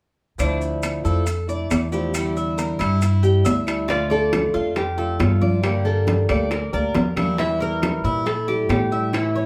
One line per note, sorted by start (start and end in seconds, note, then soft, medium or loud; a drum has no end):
0.38 1.01 D2 medium
0.38 1.03 D3 medium
0.38 1.04 F3 medium
0.38 1.04 A3 medium
0.38 0.60 D4 medium
0.38 1.04 D4 medium
0.38 1.03 E4 medium
0.38 high timbale medium
0.38 maracas medium
0.61 maracas soft
0.83 high timbale medium
0.83 low timbale soft
0.83 claves medium
0.83 maracas medium
1.04 1.66 F2 medium
1.04 1.25 F3 soft
1.04 1.25 A3 medium
1.04 1.25 D4 medium
1.04 1.25 E4 medium
1.04 1.47 A4 medium
1.04 maracas soft
1.26 muted steel-string acoustic guitar stroke medium
1.26 high timbale medium
1.26 maracas medium
1.48 1.92 A3 soft
1.48 1.91 D4 soft
1.48 1.91 E4 soft
1.48 1.91 D5 medium
1.48 maracas soft
1.70 2.74 E2 medium
1.70 high timbale medium
1.70 low timbale medium
1.70 claves medium
1.70 maracas medium
1.92 2.14 F3 medium
1.92 2.14 A3 medium
1.92 2.13 D4 medium
1.92 2.13 E4 medium
1.92 2.35 G4 medium
1.92 maracas soft
2.14 2.79 D3 medium
2.14 2.79 G3 medium
2.14 2.80 D4 medium
2.14 2.78 E4 medium
2.14 high timbale medium
2.14 claves medium
2.14 maracas medium
2.37 2.58 E5 medium
2.37 maracas soft
2.58 2.79 A#4 medium
2.58 high timbale medium
2.58 low timbale medium
2.58 maracas medium
2.79 3.41 G2 medium
2.79 3.01 G3 medium
2.79 3.01 D4 medium
2.79 3.22 E4 medium
2.79 3.01 E4 medium
2.79 high timbale medium
2.79 claves medium
2.79 maracas soft
3.02 muted steel-string acoustic guitar stroke soft
3.02 high timbale medium
3.02 maracas medium
3.23 3.67 G3 soft
3.23 3.67 D4 soft
3.23 3.66 E4 soft
3.23 3.44 G4 medium
3.23 maracas soft
3.45 4.48 D2 medium
3.45 3.87 E5 medium
3.45 high timbale medium
3.45 low timbale medium
3.45 maracas medium
3.67 3.89 G3 medium
3.67 3.88 D4 medium
3.67 3.88 E4 medium
3.67 high timbale medium
3.67 claves medium
3.67 maracas soft
3.88 4.53 D3 medium
3.88 4.54 A3 medium
3.88 4.54 D4 medium
3.88 4.10 F4 medium
3.88 4.52 F4 medium
3.88 4.10 D5 medium
3.88 high bongo medium
3.88 high conga soft
3.88 high timbale medium
4.10 4.72 A4 medium
4.10 4.53 D5 medium
4.10 high conga soft
4.33 high bongo medium
4.33 high conga medium
4.33 high timbale medium
4.33 low timbale medium
4.33 claves medium
4.53 5.16 F2 medium
4.53 4.75 A3 soft
4.53 4.75 D4 medium
4.53 4.75 F4 medium
4.53 4.97 F4 medium
4.75 5.17 G4 medium
4.75 muted steel-string acoustic guitar stroke soft
4.75 high bongo medium
4.75 high conga soft
4.75 high timbale medium
4.97 5.42 A3 soft
4.97 5.41 D4 soft
4.97 5.40 F4 soft
4.97 5.40 A4 medium
4.97 high conga soft
5.19 6.23 G2 medium
5.19 5.63 F4 medium
5.19 high bongo medium
5.19 low bongo medium
5.19 high conga soft
5.19 high timbale medium
5.19 low timbale medium
5.19 claves medium
5.41 5.64 A3 soft
5.41 5.63 D4 medium
5.41 5.62 F4 medium
5.41 5.84 D5 medium
5.41 high conga medium
5.63 6.28 D3 medium
5.63 6.31 G3 medium
5.63 6.30 A#3 medium
5.63 6.28 D4 medium
5.63 5.86 G4 medium
5.63 6.28 G4 medium
5.63 high bongo medium
5.63 high conga soft
5.63 high timbale medium
5.63 claves medium
5.85 6.28 A#3 medium
5.85 6.26 A4 medium
5.85 high bongo soft
5.85 high conga soft
6.07 high bongo medium
6.07 high conga medium
6.07 high timbale medium
6.07 low timbale medium
6.28 6.70 D2 medium
6.28 6.49 G3 medium
6.28 6.50 A#3 soft
6.28 6.50 D4 medium
6.28 6.50 G4 medium
6.28 6.72 D5 medium
6.28 high bongo soft
6.28 high conga soft
6.28 high timbale medium
6.28 claves medium
6.51 6.73 A#4 medium
6.51 muted steel-string acoustic guitar stroke medium
6.51 high bongo medium
6.51 high conga soft
6.51 high timbale medium
6.72 6.93 D2 medium
6.72 7.16 A#3 soft
6.72 7.15 D4 soft
6.72 7.15 G4 soft
6.72 7.15 A#4 medium
6.72 7.14 D5 medium
6.72 high conga soft
6.95 7.98 E2 medium
6.95 high bongo medium
6.95 low bongo medium
6.95 high conga medium
6.95 high timbale medium
6.95 low timbale medium
7.16 7.37 G3 medium
7.16 7.38 A#3 medium
7.16 7.38 D4 medium
7.16 7.38 E4 medium
7.16 7.37 G4 medium
7.16 high bongo soft
7.16 high conga medium
7.16 high timbale medium
7.16 claves medium
7.37 8.26 E3 medium
7.37 8.03 G3 medium
7.37 7.60 E4 medium
7.37 8.03 E4 medium
7.37 7.59 E5 medium
7.37 high bongo medium
7.37 high conga soft
7.37 high timbale medium
7.60 8.03 A#4 medium
7.60 8.26 A#4 medium
7.60 high conga soft
7.82 high bongo medium
7.82 high conga medium
7.82 high timbale medium
7.82 low timbale medium
7.82 claves medium
8.04 8.65 A#2 medium
8.04 8.26 G3 soft
8.04 8.25 E4 medium
8.04 8.47 E4 medium
8.26 8.69 A4 medium
8.26 muted steel-string acoustic guitar stroke medium
8.26 high bongo medium
8.26 high conga soft
8.26 high timbale medium
8.48 8.91 G3 soft
8.48 8.90 E4 soft
8.48 8.90 G4 medium
8.48 high conga soft
8.69 9.46 A2 medium
8.69 9.14 G4 medium
8.69 high bongo medium
8.69 low bongo medium
8.69 high conga soft
8.69 high timbale medium
8.69 low timbale medium
8.69 claves medium
8.91 9.13 G3 medium
8.91 9.12 E4 medium
8.91 9.34 E5 medium
9.13 9.46 E3 medium
9.13 9.46 A3 medium
9.13 9.46 C#4 medium
9.13 9.46 E4 medium
9.13 high bongo medium
9.13 high conga soft
9.13 high timbale medium
9.13 claves medium
9.35 9.46 C#5 medium
9.35 high bongo soft
9.35 high conga soft